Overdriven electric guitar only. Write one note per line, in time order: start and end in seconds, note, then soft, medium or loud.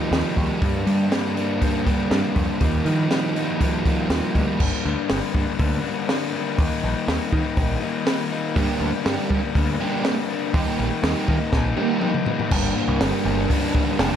0.00 0.10 D#3 medium
0.00 0.12 G3 soft
0.00 0.13 A#3 medium
0.00 0.13 D#4 medium
0.11 0.60 D#3 medium
0.11 0.62 G3 medium
0.11 0.63 A#3 medium
0.11 0.62 D#4 medium
0.61 1.11 G2 medium
0.61 1.09 D3 medium
0.61 0.89 G3 medium
0.61 0.88 A#3 medium
0.61 0.85 D4 medium
0.86 1.11 G3 medium
0.86 1.12 A#3 medium
0.86 1.13 D4 medium
1.11 1.59 D3 medium
1.11 1.38 G3 medium
1.11 1.37 A#3 medium
1.11 1.34 D4 medium
1.35 1.61 G3 medium
1.35 1.62 A#3 medium
1.35 1.62 D4 medium
1.60 2.10 G2 medium
1.60 2.08 D3 medium
1.60 1.88 G3 medium
1.60 1.86 A#3 medium
1.60 1.83 D4 medium
1.85 2.10 G3 medium
1.85 2.12 A#3 medium
1.85 2.12 D4 medium
2.09 2.59 D3 medium
2.09 2.61 G3 medium
2.09 2.62 A#3 medium
2.09 2.60 D4 medium
2.60 3.08 D#3 medium
2.60 2.87 G3 medium
2.60 2.85 A#3 medium
2.60 2.83 D#4 medium
2.84 3.10 G3 medium
2.84 3.11 A#3 medium
2.84 3.12 D#4 medium
3.10 3.58 D#3 medium
3.10 3.38 G3 medium
3.10 3.36 A#3 medium
3.10 3.34 D#4 medium
3.35 3.60 G3 medium
3.35 3.61 A#3 medium
3.35 3.62 D#4 medium
3.59 4.07 D#3 medium
3.59 3.87 G3 medium
3.59 3.85 A#3 medium
3.59 3.84 D#4 medium
3.85 4.09 G3 medium
3.85 4.10 A#3 medium
3.85 4.11 D#4 medium
4.09 4.58 D#3 medium
4.09 4.58 G3 medium
4.09 4.59 A#3 medium
4.09 4.60 D#4 medium
4.59 5.07 G2 medium
4.59 5.09 D3 medium
4.59 4.88 G3 medium
4.59 4.86 A#3 medium
4.59 4.83 D4 medium
4.84 5.10 G3 medium
4.84 5.11 A#3 medium
4.84 5.11 D4 medium
5.08 5.59 G2 medium
5.08 5.57 D3 medium
5.08 5.37 G3 medium
5.08 5.35 A#3 medium
5.08 5.33 D4 medium
5.34 5.60 G3 medium
5.34 5.61 A#3 medium
5.34 5.61 D4 medium
5.59 5.85 D3 medium
5.59 5.85 G3 medium
5.59 5.84 A#3 medium
5.59 5.82 D4 medium
5.83 6.35 G2 medium
5.83 6.07 D3 medium
5.83 6.09 G3 medium
5.83 6.10 A#3 medium
5.83 6.11 D4 medium
6.08 6.57 D3 medium
6.08 6.36 G3 medium
6.08 6.35 A#3 medium
6.08 6.32 D4 medium
6.33 6.58 G3 medium
6.33 6.59 A#3 medium
6.33 6.57 D4 medium
6.57 7.06 D#3 medium
6.57 6.85 G3 medium
6.57 6.84 A#3 medium
6.57 6.81 D#4 medium
6.82 7.08 G3 medium
6.82 7.09 A#3 medium
6.82 7.09 D#4 medium
7.07 7.56 D#3 medium
7.07 7.36 G3 medium
7.07 7.34 A#3 loud
7.07 7.31 D#4 loud
7.32 7.58 G3 medium
7.32 7.59 A#3 medium
7.32 7.59 D#4 medium
7.57 7.83 D#3 medium
7.57 7.83 G3 medium
7.57 7.82 A#3 medium
7.57 7.79 D#4 medium
7.81 8.05 D#3 medium
7.81 8.07 G3 medium
7.81 8.08 A#3 medium
7.81 8.09 D#4 medium
8.06 8.55 D#3 medium
8.06 8.33 G3 medium
8.06 8.32 A#3 medium
8.06 8.29 D#4 medium
8.30 8.57 G3 soft
8.30 8.57 A#3 medium
8.30 8.54 D#4 medium
8.55 9.03 G2 medium
8.55 9.04 D3 medium
8.55 8.82 G3 medium
8.55 8.81 A#3 medium
8.55 8.78 D4 medium
8.79 9.06 G3 medium
8.79 9.07 A#3 medium
8.79 9.07 D4 medium
9.04 9.54 G2 medium
9.04 9.53 D3 medium
9.04 9.32 G3 medium
9.04 9.31 A#3 loud
9.04 9.28 D4 loud
9.30 9.55 G3 medium
9.30 9.56 A#3 medium
9.30 9.57 D4 medium
9.54 9.80 D3 medium
9.54 9.80 G3 medium
9.54 9.80 A#3 medium
9.54 9.78 D4 medium
9.79 10.31 G2 medium
9.79 10.02 D3 medium
9.79 10.05 G3 medium
9.79 10.06 A#3 medium
9.79 10.06 D4 medium
10.04 10.52 D3 medium
10.04 10.32 G3 medium
10.04 10.30 A#3 medium
10.04 10.27 D4 medium
10.29 10.54 G3 medium
10.29 10.55 A#3 medium
10.29 10.52 D4 medium
10.53 11.02 D#3 medium
10.53 10.81 G3 medium
10.53 10.79 A#3 medium
10.53 10.77 D#4 medium
10.78 11.04 G3 medium
10.78 11.04 A#3 medium
10.78 11.06 D#4 medium
11.03 11.52 D#3 medium
11.03 11.31 G3 medium
11.03 11.30 A#3 loud
11.03 11.28 D#4 loud
11.29 11.53 G3 medium
11.29 11.54 A#3 medium
11.29 11.55 D#4 medium
11.53 11.80 D#3 medium
11.53 11.79 G3 medium
11.53 11.77 A#3 medium
11.53 11.76 D#4 medium
11.78 12.01 D#3 medium
11.78 12.02 G3 medium
11.78 12.03 A#3 medium
11.78 12.05 D#4 medium
12.02 12.50 D#3 medium
12.02 12.29 G3 medium
12.02 12.28 A#3 medium
12.02 12.26 D#4 medium
12.27 12.52 G3 medium
12.27 12.51 A#3 medium
12.27 12.50 D#4 medium
12.52 12.99 G2 medium
12.52 13.00 D3 medium
12.52 13.02 G3 medium
12.52 13.03 A#3 medium
12.52 13.03 D4 medium
13.00 13.50 G2 medium
13.00 13.48 D3 loud
13.00 13.28 G3 loud
13.00 13.27 A#3 loud
13.00 13.24 D4 loud
13.25 13.50 G3 medium
13.25 13.51 A#3 medium
13.25 13.52 D4 medium
13.49 13.98 D3 medium
13.49 14.00 G3 medium
13.49 14.01 A#3 medium
13.49 14.01 D4 medium
13.99 14.16 D3 medium
13.99 14.16 G3 medium
13.99 14.16 A#3 medium
13.99 14.16 D4 medium